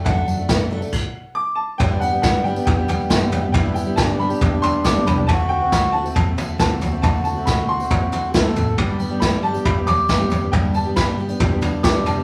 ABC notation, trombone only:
X:1
M:4/4
L:1/8
Q:1/4=137
K:G
V:1 name="Trombone"
z8 | B,8 | E2 D6 | F4- F z F2- |
F6 A2 | G8- | G3 z D4 |]